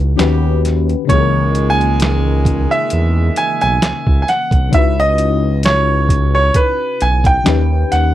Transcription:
Already playing: fm electric piano C#3 C#4 D#4 E4 F#4 B4
0.00 analog synth bass C#2
0.17 analog synth bass D#2, horn section C#3 B3 G4, fm electric piano D#3 C#4 F#4 G4, snare, closed hi-hat
0.21 fm electric piano B4
0.65 snare, closed hi-hat
0.89 closed hi-hat
1.05 horn section A#2 D#3 G#3, fm electric piano C#3 C#4, kick
1.09 analog synth bass C#2, fm electric piano E3 A#3, grand piano C#5, closed hi-hat
1.14 fm electric piano G#4
1.20 fm electric piano A#4
1.55 closed hi-hat
1.70 grand piano G#5
1.81 closed hi-hat
2.00 snare, closed hi-hat
2.45 kick, closed hi-hat
2.71 grand piano E5, closed hi-hat
2.90 analog synth bass E2, closed hi-hat
3.36 grand piano G#5, closed hi-hat
3.61 analog synth bass B1, grand piano G#5, closed hi-hat
3.82 analog synth bass C#2, snare, closed hi-hat
4.07 analog synth bass C#2, kick
4.22 grand piano G#5
4.28 grand piano F#5, snare, closed hi-hat
4.51 analog synth bass C2, kick, closed hi-hat
4.69 fm electric piano C#3 C#4 D#4, kick, closed hi-hat
4.73 analog synth bass C#2, fm electric piano E4 F#4, grand piano E5
4.78 fm electric piano B4
5.00 grand piano D#5
5.18 closed hi-hat
5.63 grand piano C#5, snare, closed hi-hat
6.09 kick, closed hi-hat
6.35 grand piano C#5
6.54 grand piano B4, kick, closed hi-hat
7.01 analog synth bass B1, grand piano G#5, closed hi-hat
7.24 grand piano G5, kick, closed hi-hat
7.44 analog synth bass D#2, fm electric piano D#3 C#4 D#4 G4, snare, closed hi-hat
7.48 fm electric piano B4
7.92 analog synth bass D#2, grand piano F#5, snare, closed hi-hat

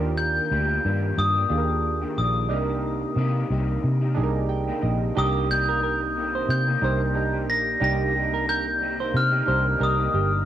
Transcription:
Already playing: fingered electric bass D#2, clean electric guitar D#3 A#3 D4 G4, synth keys D4 F4 G4 A#4
0.17 glockenspiel G6
0.50 fingered electric bass D2, clean electric guitar A#3 D4 G4
0.84 fingered electric bass G2, clean electric guitar D#3 A#3 D4 G4
1.18 fingered electric bass G2, glockenspiel D#6
1.35 clean electric guitar A#3 D4 G4
1.49 fingered electric bass D#2, synth keys D4 F4 G4 G#4
1.58 synth keys A#4
2.02 clean electric guitar D#3 A#3 D4 G4
2.18 fingered electric bass A#1, glockenspiel D#6
2.49 fingered electric bass C2, clean electric guitar C3 A#3 D#4 G4, synth keys D4 D#4 G4 A#4
3.16 clean electric guitar C3 A#3 D#4 G4, fingered electric bass C3
3.50 fingered electric bass C2, clean electric guitar C3 A#3 D#4 G4
3.84 fingered electric bass C3
4.01 clean electric guitar A#3 D#4 G4
4.14 fingered electric bass C2, synth keys D4 D#4 G4 G#4
4.23 synth keys A#4
4.49 synth keys G5
4.68 clean electric guitar C3 A#3 D#4 G4
4.82 fingered electric bass A#1, synth keys D#5
5.15 fingered electric bass C2, clean electric guitar C3 A#3 D#4 G4, synth keys D4 D#4 G4 A#4, glockenspiel D#6
5.49 clean electric guitar C3 A#3 D#4 G4, glockenspiel G6
5.69 clean electric guitar A#4
5.83 clean electric guitar A#4
6.16 clean electric guitar C3 A#3 D#4 G4
6.35 clean electric guitar C5
6.49 fingered electric bass C3, glockenspiel G6
6.67 clean electric guitar C3 A#3 D#4 G4
6.81 fingered electric bass C2, synth keys D4 D#4 G4 A#4, clean electric guitar C5
7.14 synth keys D4 D#4 G4 A#4
7.33 clean electric guitar A#3 D#4 G4
7.49 fingered electric bass A#1, glockenspiel A#6
7.80 fingered electric bass C2, clean electric guitar C3 A#3 D#4 G4, synth keys D4 D#4 G4 A#4, glockenspiel A#6
8.13 clean electric guitar C3 A#3 D#4 G4
8.34 clean electric guitar A#4
8.49 clean electric guitar A#4, glockenspiel G6
8.81 clean electric guitar C3 A#3 D#4 G4
9.00 clean electric guitar C5
9.14 fingered electric bass C3, glockenspiel F6
9.32 clean electric guitar C3 A#3 D#4 G4
9.46 fingered electric bass C2, synth keys D4 D#4 G4 A#4, clean electric guitar C5
9.78 fingered electric bass C2, synth keys D4 D#4 G4 A#4, clean electric guitar A#4
9.83 glockenspiel D#6
9.97 clean electric guitar A#3 D#4 G4
10.14 fingered electric bass G1, clean electric guitar G4

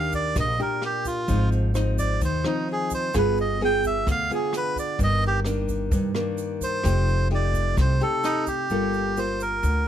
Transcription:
Already playing: upright bass D#2, nylon-string guitar D#3 A#3 D4 G4, melodica F5
0.12 melodica D5, kick, closed hi-hat, shaker
0.35 upright bass A#1, nylon-string guitar A#2, kick, cross-stick, closed hi-hat, shaker
0.40 melodica D#5
0.59 nylon-string guitar A#3 D4 G4, melodica A#4, closed hi-hat, shaker
0.82 melodica G4, cross-stick, closed hi-hat
1.05 melodica F4, kick, closed hi-hat, shaker
1.28 upright bass G#1, nylon-string guitar G#2 F3 C4 D#4, kick, closed hi-hat, shaker
1.52 closed hi-hat, shaker
1.74 nylon-string guitar F3 C4 D#4, cross-stick, closed hi-hat, shaker
1.98 melodica D5, kick, closed hi-hat, shaker
2.21 upright bass D#2, nylon-string guitar D#3, melodica C5, kick, closed hi-hat, shaker
2.44 nylon-string guitar F3 C4 D#4, melodica D#4, cross-stick, closed hi-hat, shaker
2.68 melodica G#4, closed hi-hat
2.90 melodica C5, kick, closed hi-hat, shaker
3.14 upright bass G1, nylon-string guitar G3 B3 F4 G#4, kick, cross-stick, closed hi-hat, shaker
3.18 melodica B4
3.38 melodica D#5, closed hi-hat, shaker
3.61 nylon-string guitar B3 F4 G#4, melodica G5, closed hi-hat
3.84 melodica E5, kick, closed hi-hat, shaker
4.07 upright bass D2, nylon-string guitar D3, kick, cross-stick, closed hi-hat, shaker
4.11 melodica F5
4.30 nylon-string guitar B3 F4 G#4, closed hi-hat, shaker
4.35 melodica G#4
4.53 cross-stick, closed hi-hat, shaker
4.57 melodica B4
4.76 melodica D5, kick, closed hi-hat, shaker
4.99 upright bass G1, nylon-string guitar G2 D#3 A#3 D4, kick, closed hi-hat, shaker
5.03 melodica D#5
5.22 closed hi-hat, shaker
5.27 melodica G4
5.45 nylon-string guitar D#3 A#3 D4, cross-stick, closed hi-hat, shaker
5.68 kick, closed hi-hat, shaker
5.91 upright bass G2, nylon-string guitar G2, kick, closed hi-hat, shaker
6.14 nylon-string guitar D#3 A#3 D4, cross-stick, closed hi-hat, shaker
6.37 closed hi-hat, shaker
6.61 melodica C5, kick, closed hi-hat, shaker
6.83 upright bass F1, nylon-string guitar F3 A3 D#4 G4, kick, cross-stick, closed hi-hat, shaker
7.07 closed hi-hat, shaker
7.30 nylon-string guitar A3 D#4 G4, closed hi-hat
7.35 melodica D5
7.54 kick, closed hi-hat, shaker
7.77 upright bass C2, nylon-string guitar C3, kick, cross-stick, closed hi-hat, shaker
7.81 melodica C5
8.00 nylon-string guitar A3 D#4 G4, melodica A4, closed hi-hat, shaker
8.24 melodica D#4, cross-stick, closed hi-hat, shaker
8.47 melodica G4, kick, closed hi-hat, shaker
8.70 upright bass G1, nylon-string guitar G3 A#3 F4 A4, shaker
8.94 shaker
9.17 nylon-string guitar A#3 F4, melodica C5, shaker
9.40 melodica A#4, shaker
9.63 upright bass D2, nylon-string guitar D3, shaker

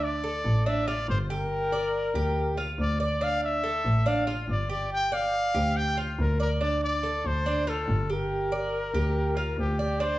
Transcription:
Already playing: double bass D2, cuban tres D4
0.03 trumpet D5
0.24 cuban tres A4
0.45 double bass A1
0.66 cuban tres D4, trumpet E5
0.87 cuban tres F4, trumpet D5
1.09 double bass G1, trumpet C5
1.30 cuban tres G4, trumpet A#4
1.72 cuban tres D5
2.15 double bass D2, cuban tres G4
2.57 cuban tres F4
2.79 double bass D2, trumpet D5
3.00 cuban tres D5, trumpet D5
3.21 cuban tres D4, trumpet F5
3.44 trumpet E5
3.64 cuban tres A4
3.85 double bass A1
4.06 cuban tres D4, trumpet F5
4.27 cuban tres F4
4.48 double bass G1, trumpet D5
4.69 cuban tres G4, trumpet D5
4.93 trumpet G5
5.12 cuban tres D5, trumpet F5
5.54 double bass D2, cuban tres G4
5.77 trumpet G5
5.97 cuban tres F4
6.19 double bass D2, trumpet A#4
6.40 trumpet A#4, cuban tres D5
6.61 cuban tres D4, trumpet D5
6.83 trumpet D5
7.03 cuban tres A4
7.25 double bass D2, trumpet C5
7.46 cuban tres D4
7.67 cuban tres F4, trumpet A4
7.88 double bass G1
8.10 cuban tres G4, trumpet A#4
8.52 cuban tres D5
8.94 double bass D2, cuban tres G4
9.37 cuban tres F4
9.58 double bass D2, trumpet G4
9.79 trumpet G4, cuban tres D5
10.00 cuban tres D4, trumpet C5

